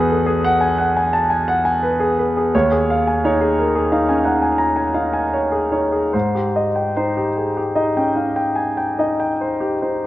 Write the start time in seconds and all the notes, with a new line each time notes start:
Already playing: E2 G#4 B4 F#5 G#5
0.10 A4
0.26 G#4
0.44 F#5
0.61 G#5
0.78 F#5
0.97 G#5
1.13 A5
1.30 G#5
1.48 F#5
1.65 G#5
1.83 B4
2.00 G#4
2.19 B4
2.37 G#4
2.54 D#2 C#5
2.71 G#4
2.90 F5
3.07 G#5
3.25 D#4 C#5
3.41 G#4
3.59 A#4
3.75 G#4
3.92 D#4 F5
4.09 C#4 G#5
4.25 D#4 F#5
4.42 G#5
4.58 A#5
4.76 G#5
4.94 D#4 F5
5.13 G#5
5.34 C#5
5.52 G#4
5.72 D#4 C#5
5.92 G#4
6.13 G#2 C5
6.35 G4
6.56 D#5
6.76 G5
6.96 D#4 C5
7.17 G4
7.37 G#4
7.57 G4
7.75 D#4 D#5
7.97 C#4 G5
8.16 D#4 F5
8.36 G5
8.56 G#5
8.77 G5
8.99 D#4 D#5
9.20 G5
9.41 C5
9.61 G4
9.82 D#4 C5